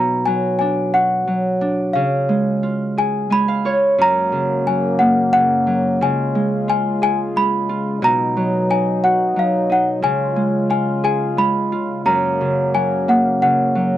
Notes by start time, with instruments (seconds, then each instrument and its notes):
Already playing: harp B2 D#4 F#4, celesta A#5
0.26 harp F#3, celesta G#5
0.59 harp D4, celesta G#5
0.94 harp F#4, celesta F#5
1.27 harp F#3
1.61 harp D4
1.93 harp C#3, celesta F5
2.29 harp G#3
2.63 harp F4
2.97 harp G#4, celesta G#5
3.30 harp G#3 G#5, celesta B5
3.48 harp F5
3.65 harp F4 C#5
3.98 brass ensemble F#2 C#3 A#3, harp F#2
4.02 celesta A#5
4.32 harp C#3
4.67 harp F#3, celesta G#5
4.99 harp A#3, celesta F#5
5.33 harp C#3, celesta F#5
5.67 harp F#3
6.00 harp C#3, brass ensemble G#3 F4, celesta G#5
6.35 harp G#3
6.68 harp F4, celesta G#5
7.02 harp G#4, celesta G#5
7.36 harp G#3, celesta B5
7.69 harp F4
7.99 brass ensemble B2 F#3 D#4, harp B2
8.04 celesta A#5
8.37 harp F#3
8.70 harp D#4, celesta G#5
9.04 harp F#4, celesta F#5
9.36 harp F#3, celesta F5
9.70 harp D#4, celesta F#5
10.01 brass ensemble C#3 G#3 F4, harp C#3, celesta G#5
10.36 harp G#3
10.70 harp F4, celesta G#5
11.04 harp G#4, celesta G#5
11.37 harp G#3, celesta B5
11.72 harp F4
12.05 brass ensemble F#2 A#3, harp F#2, celesta A#5
12.41 harp C#3
12.74 harp F#3, celesta G#5
13.08 harp A#3, celesta F#5
13.42 harp C#3, celesta F#5
13.75 harp F#3